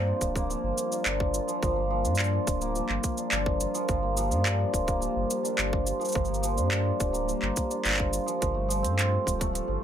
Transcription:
0.00 0.13 G2 medium
0.00 0.20 F3 medium
0.00 9.84 G3 medium
0.00 0.35 A#3 medium
0.00 2.94 C4 medium
0.00 0.91 D4 medium
0.00 3.85 F4 medium
0.00 0.94 G4 medium
0.00 8.38 A#4 medium
0.07 1.34 F4 medium
0.21 0.55 D1 medium
0.21 0.49 F3 medium
0.21 kick medium
0.21 shaker medium
0.36 1.76 A#3 loud
0.36 kick loud
0.36 shaker soft
0.50 1.04 F3 medium
0.50 shaker soft
0.63 0.72 G1 loud
0.78 shaker medium
0.92 2.04 D4 medium
0.92 shaker soft
1.05 1.40 G1 medium
1.05 1.46 F3 medium
1.05 clap loud
1.05 shaker soft
1.20 kick loud
1.34 2.33 F4 medium
1.34 shaker medium
1.48 1.61 F3 medium
1.48 shaker soft
1.62 2.06 G1 loud
1.62 1.89 F3 medium
1.62 kick loud
1.62 shaker soft
1.76 2.61 A#3 medium
1.90 2.17 F3 medium
2.04 2.39 G2 medium
2.04 3.17 D4 medium
2.04 shaker soft
2.15 2.46 F3 medium
2.15 clap loud
2.15 shaker soft
2.19 shaker soft
2.24 shaker soft
2.33 3.60 F4 medium
2.47 2.81 D1 loud
2.47 2.74 F3 medium
2.47 kick loud
2.47 shaker medium
2.61 4.02 A#3 loud
2.61 shaker soft
2.75 3.31 F3 medium
2.75 shaker soft
2.89 2.98 G1 medium
2.89 clap soft
3.04 kick medium
3.04 shaker medium
3.18 4.30 D4 medium
3.18 shaker soft
3.32 3.66 G1 medium
3.32 3.73 F3 medium
3.32 clap medium
3.32 shaker soft
3.46 kick loud
3.61 4.59 F4 medium
3.61 shaker medium
3.74 3.87 F3 medium
3.74 shaker soft
3.88 4.32 G1 loud
3.88 4.16 F3 medium
3.88 8.37 G4 medium
3.88 kick loud
3.88 shaker soft
4.03 4.86 A#3 medium
4.17 4.44 F3 loud
4.17 shaker medium
4.30 4.65 G2 medium
4.30 5.43 D4 medium
4.30 shaker soft
4.46 4.71 F3 medium
4.46 clap medium
4.46 shaker soft
4.59 5.85 F4 medium
4.72 5.07 D1 loud
4.72 4.99 F3 medium
4.72 kick medium
4.72 shaker medium
4.87 6.28 A#3 medium
4.87 kick loud
4.87 shaker soft
5.00 5.56 F3 medium
5.00 shaker soft
5.16 5.25 G1 loud
5.31 shaker medium
5.43 6.56 D4 medium
5.43 shaker soft
5.57 5.92 G1 medium
5.57 5.98 F3 medium
5.57 clap loud
5.57 shaker soft
5.73 kick loud
5.85 6.84 F4 medium
5.85 shaker medium
6.00 6.13 F3 medium
6.00 shaker soft
6.05 shaker soft
6.08 shaker soft
6.12 6.59 G1 loud
6.12 6.41 F3 medium
6.12 kick loud
6.12 shaker soft
6.25 7.12 A#3 medium
6.25 shaker soft
6.34 shaker soft
6.43 6.70 F3 loud
6.43 shaker medium
6.57 6.91 G2 medium
6.57 7.70 D4 medium
6.57 shaker soft
6.71 6.98 F3 medium
6.71 clap medium
6.71 shaker soft
6.85 8.13 F4 medium
6.99 7.34 D1 loud
6.99 7.26 F3 medium
6.99 kick loud
6.99 shaker medium
7.13 8.60 A#3 medium
7.13 shaker soft
7.27 7.83 F3 medium
7.27 shaker soft
7.42 7.51 G1 medium
7.42 clap soft
7.56 kick medium
7.56 shaker medium
7.70 9.84 D4 medium
7.70 shaker soft
7.84 8.19 G1 medium
7.84 8.25 F3 medium
7.84 clap soft
7.84 shaker soft
7.87 clap medium
7.89 clap medium
7.92 clap medium
7.94 clap medium
7.96 kick loud
7.96 clap medium
8.13 9.10 F4 medium
8.13 shaker medium
8.26 8.39 F3 medium
8.26 shaker soft
8.41 8.85 G1 loud
8.41 8.67 F3 medium
8.41 9.84 F4 medium
8.41 9.84 A4 medium
8.41 kick loud
8.41 closed hi-hat soft
8.41 shaker soft
8.54 9.39 A3 medium
8.69 9.24 F3 medium
8.69 shaker medium
8.83 9.18 G2 medium
8.83 9.84 C4 medium
8.83 closed hi-hat soft
8.83 shaker soft
8.99 clap medium
8.99 closed hi-hat soft
8.99 shaker soft
9.11 9.84 F4 medium
9.26 9.61 D1 medium
9.26 9.52 F3 medium
9.26 kick medium
9.26 shaker medium
9.39 9.84 A3 medium
9.39 kick medium
9.39 closed hi-hat medium
9.39 shaker soft
9.53 9.66 F3 medium
9.53 closed hi-hat soft
9.53 shaker soft
9.68 9.77 G1 loud
9.68 9.84 F3 medium

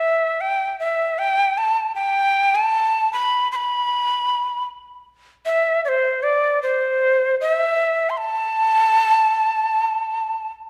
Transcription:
0.00 0.42 E5 medium
0.41 0.79 G5 medium
0.80 1.20 E5 medium
1.19 1.59 G5 medium
1.58 1.95 A5 medium
1.95 2.57 G5 medium
2.55 3.12 A5 medium
3.13 3.48 B5 medium
3.52 4.64 B5 medium
3.52 3.57 C6 medium
5.46 5.81 E5 medium
5.85 6.24 C5 medium
5.85 5.89 D5 medium
6.23 6.62 D5 medium
6.63 7.36 C5 medium
7.41 8.11 E5 medium
8.10 8.19 C6 medium
8.18 10.51 A5 loud

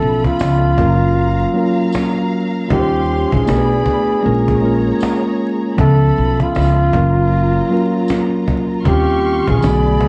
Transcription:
0.00 0.22 B1 loud
0.00 0.77 F3 medium
0.00 0.77 B3 medium
0.00 0.77 C#4 medium
0.00 0.77 F4 medium
0.00 0.22 A4 loud
0.00 0.77 A4 medium
0.00 0.79 A4 medium
0.00 0.78 E5 medium
0.00 0.77 B5 medium
0.24 2.14 F4 loud
0.24 cajon bass medium
0.39 0.73 C#2 medium
0.39 cajon slap loud
0.39 tambourine medium
0.76 1.43 F#1 medium
0.76 1.42 F#3 medium
0.76 2.68 F#3 medium
0.76 1.43 A#3 medium
0.76 1.43 C#4 medium
0.76 1.44 F4 medium
0.76 3.45 F5 medium
0.76 2.68 A#5 medium
0.76 cajon bass loud
0.76 cajon slap soft
0.80 1.44 A#4 medium
1.54 2.48 F#3 medium
1.54 2.48 A#3 medium
1.54 2.49 C#4 medium
1.54 2.49 F4 medium
1.58 2.50 A#4 medium
1.93 cajon slap loud
1.93 tambourine medium
2.68 3.23 D#2 loud
2.68 3.46 G3 medium
2.68 3.47 C#4 medium
2.68 3.47 D#4 medium
2.68 3.48 F4 medium
2.68 3.47 G4 medium
2.68 3.30 G4 medium
2.68 3.47 C6 medium
2.68 cajon bass loud
2.73 2.79 A#4 medium
2.79 3.51 C5 medium
3.32 3.45 A#1 medium
3.32 4.98 G#4 medium
3.32 cajon bass medium
3.46 3.81 B1 medium
3.46 4.12 A3 medium
3.46 4.24 A3 medium
3.46 4.12 B3 medium
3.46 4.13 D4 medium
3.46 4.13 F#4 medium
3.46 4.24 D5 medium
3.46 4.24 B5 medium
3.46 cajon slap loud
3.46 tambourine medium
3.50 3.57 A#4 medium
3.57 4.17 B4 medium
3.86 cajon bass medium
3.86 cajon slap soft
4.23 4.90 A#1 medium
4.23 4.56 G#3 medium
4.23 4.57 A#3 medium
4.23 4.57 C#4 medium
4.23 4.58 F4 medium
4.23 5.76 G#4 medium
4.23 5.76 C#5 medium
4.23 5.76 A#5 medium
4.27 4.58 A#4 loud
4.48 cajon bass medium
4.61 5.55 G#3 medium
4.61 5.56 A#3 medium
4.61 5.56 C#4 medium
4.61 5.57 F4 medium
4.65 5.57 A#4 medium
5.00 cajon slap loud
5.00 tambourine medium
5.76 6.11 C#2 loud
5.76 6.93 F3 medium
5.76 6.93 B3 medium
5.76 6.94 C#4 medium
5.76 8.83 F4 medium
5.76 6.92 A4 medium
5.76 6.38 A4 loud
5.76 6.95 A4 medium
5.76 6.94 E5 medium
5.76 6.92 B5 medium
5.76 cajon bass loud
6.18 6.37 B1 medium
6.40 8.29 F4 loud
6.40 cajon bass medium
6.55 6.88 C#2 medium
6.55 cajon slap loud
6.55 tambourine medium
6.93 7.59 F#1 medium
6.93 7.58 F#3 medium
6.93 8.84 F#3 medium
6.93 7.59 A#3 medium
6.93 7.59 C#4 medium
6.93 7.60 F4 medium
6.93 7.60 A#4 medium
6.93 8.84 A#5 medium
6.93 cajon bass loud
6.93 cajon slap soft
7.70 8.64 F#3 medium
7.70 8.64 A#3 medium
7.70 8.64 C#4 medium
7.70 8.65 F4 medium
7.70 8.65 A#4 medium
8.08 cajon slap loud
8.08 tambourine medium
8.48 cajon bass medium
8.84 9.38 D#2 loud
8.84 9.62 D#3 medium
8.84 9.62 G3 medium
8.84 9.63 C4 medium
8.84 9.63 C#4 medium
8.84 9.62 G4 medium
8.84 9.45 G4 loud
8.84 9.62 F5 medium
8.84 9.62 C6 medium
8.84 9.62 C#6 medium
8.84 cajon bass loud
8.88 9.64 F4 medium
9.07 cajon slap soft
9.23 cajon slap soft
9.47 9.60 A#1 loud
9.47 10.08 G#4 medium
9.47 cajon bass loud
9.61 9.96 B1 medium
9.61 10.08 D3 medium
9.61 10.08 F#3 medium
9.61 10.08 A3 medium
9.61 10.08 B3 medium
9.61 10.08 D5 medium
9.61 10.08 B5 medium
9.61 cajon slap loud
9.61 tambourine medium
9.65 10.08 F#4 medium
9.87 cajon slap soft
10.01 cajon bass medium
10.01 cajon slap soft

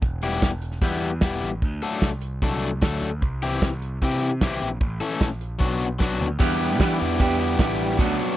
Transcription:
0.02 0.39 E1 medium
0.02 kick loud
0.22 0.50 G3 medium
0.22 0.50 B3 medium
0.22 0.49 E4 medium
0.22 0.49 G4 medium
0.22 closed hi-hat medium
0.32 snare soft
0.42 0.79 E1 medium
0.42 kick loud
0.42 snare loud
0.62 closed hi-hat medium
0.71 snare soft
0.82 1.23 E2 medium
0.82 1.09 G3 medium
0.82 1.09 B3 medium
0.82 1.09 E4 medium
0.82 1.10 G4 medium
0.82 kick loud
1.01 closed hi-hat medium
1.21 1.40 E1 medium
1.21 1.49 G3 medium
1.21 1.49 B3 medium
1.21 1.49 E4 medium
1.21 1.49 G4 medium
1.21 kick loud
1.21 snare loud
1.42 1.61 A1 medium
1.42 closed hi-hat medium
1.62 1.81 D2 medium
1.62 kick loud
1.82 2.09 F#3 medium
1.82 2.09 A3 medium
1.82 2.09 D4 medium
1.82 2.08 A4 medium
1.82 closed hi-hat medium
1.92 snare soft
2.02 2.39 C2 medium
2.02 kick loud
2.02 snare loud
2.21 closed hi-hat medium
2.42 2.82 C2 medium
2.42 2.68 F#3 medium
2.42 2.69 A3 medium
2.42 2.69 D4 medium
2.42 2.69 A4 medium
2.42 kick loud
2.62 closed hi-hat medium
2.82 3.00 D2 medium
2.82 3.08 F#3 medium
2.82 3.08 A3 medium
2.82 3.08 D4 medium
2.82 3.09 A4 loud
2.82 kick loud
2.82 snare loud
3.01 3.20 D2 medium
3.01 closed hi-hat medium
3.22 3.58 C2 medium
3.22 kick loud
3.42 3.69 E3 medium
3.42 3.69 C4 medium
3.42 3.68 E4 medium
3.42 3.68 G4 medium
3.42 closed hi-hat medium
3.53 snare soft
3.62 3.98 C2 loud
3.62 kick loud
3.62 snare loud
3.82 closed hi-hat medium
4.02 4.43 C3 medium
4.02 4.28 E3 medium
4.02 4.29 C4 medium
4.02 4.29 E4 medium
4.02 4.29 G4 medium
4.02 kick medium
4.21 closed hi-hat medium
4.41 4.60 C2 medium
4.41 4.68 E3 medium
4.41 4.68 C4 medium
4.41 4.68 E4 medium
4.41 4.68 G4 medium
4.41 kick loud
4.41 snare loud
4.61 4.80 A#1 medium
4.61 closed hi-hat medium
4.80 4.99 A1 loud
4.80 kick loud
5.01 5.27 E3 medium
5.01 5.27 A3 medium
5.01 5.27 C#4 medium
5.01 5.27 A4 medium
5.01 closed hi-hat medium
5.21 5.57 A#1 medium
5.21 kick loud
5.21 snare loud
5.41 closed hi-hat medium
5.59 5.97 B1 medium
5.59 5.86 F#3 medium
5.59 5.86 B3 medium
5.59 5.86 D4 medium
5.59 5.86 F#4 medium
5.59 kick loud
5.81 closed hi-hat medium
5.99 6.19 B1 medium
5.99 6.26 F#3 medium
5.99 6.26 B3 medium
5.99 6.26 D4 medium
5.99 6.26 F#4 loud
5.99 kick loud
5.99 snare medium
6.20 6.39 D2 medium
6.20 floor tom medium
6.39 6.80 E2 loud
6.39 6.78 G3 loud
6.39 6.80 B3 loud
6.39 6.80 D4 medium
6.39 6.80 E4 loud
6.39 6.81 G4 loud
6.39 kick loud
6.39 crash loud
6.51 closed hi-hat medium
6.60 closed hi-hat medium
6.71 closed hi-hat soft
6.80 6.98 E3 loud
6.80 7.18 G3 medium
6.80 7.00 B3 medium
6.80 7.01 D4 medium
6.80 6.99 E4 medium
6.80 6.98 G4 medium
6.80 kick loud
6.80 snare loud
6.80 closed hi-hat loud
6.90 closed hi-hat soft
6.99 7.19 E2 loud
6.99 7.20 B3 medium
6.99 7.20 D4 medium
6.99 7.19 E4 medium
6.99 7.20 G4 medium
6.99 closed hi-hat medium
7.19 7.56 E2 medium
7.19 7.58 G3 medium
7.19 7.41 B3 medium
7.19 7.42 D4 loud
7.19 7.39 E4 loud
7.19 7.38 G4 loud
7.19 kick loud
7.19 closed hi-hat loud
7.39 7.60 B3 medium
7.39 7.59 D4 medium
7.39 7.60 E4 medium
7.39 7.60 G4 medium
7.39 closed hi-hat medium
7.59 7.95 A1 medium
7.59 7.98 G3 medium
7.59 7.99 B3 medium
7.59 7.99 D4 medium
7.59 7.99 E4 medium
7.59 7.99 G4 medium
7.59 kick loud
7.59 snare loud
7.59 closed hi-hat loud
7.70 closed hi-hat soft
7.79 closed hi-hat medium
7.98 8.17 D2 loud
7.98 8.37 F#3 loud
7.98 8.37 B3 loud
7.98 8.37 D4 loud
7.98 8.37 F#4 loud
7.98 kick loud
7.98 closed hi-hat loud
8.19 closed hi-hat medium
8.30 closed hi-hat soft

